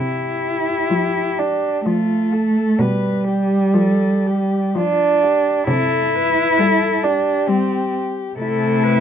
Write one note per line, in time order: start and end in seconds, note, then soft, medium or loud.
0.00 0.72 C3 soft
0.00 1.40 E4 medium
0.00 1.89 G4 soft
0.91 1.64 F3 soft
1.39 1.85 D4 medium
1.86 2.57 F3 soft
1.86 2.83 A3 medium
1.86 2.34 F4 soft
2.33 2.82 A4 soft
2.79 3.55 B2 medium
2.79 4.77 G3 medium
2.79 3.27 B4 soft
3.28 3.76 G4 soft
3.74 4.52 F3 soft
3.74 4.28 A4 soft
4.27 4.79 G4 soft
4.75 5.46 F3 medium
4.75 5.67 D4 medium
4.75 5.25 F4 soft
5.24 5.69 G4 soft
5.67 6.41 C3 medium
5.67 7.05 E4 medium
5.67 6.17 A4 medium
6.15 6.61 B4 soft
6.58 7.26 G3 medium
6.58 7.06 A4 medium
7.03 7.51 D4 medium
7.03 8.38 G4 soft
7.48 8.16 G3 medium
7.48 7.93 C4 medium
8.37 9.00 C3 soft
8.37 9.00 A3 medium
8.37 9.00 E4 medium
8.37 8.85 A4 medium
8.83 9.00 B4 medium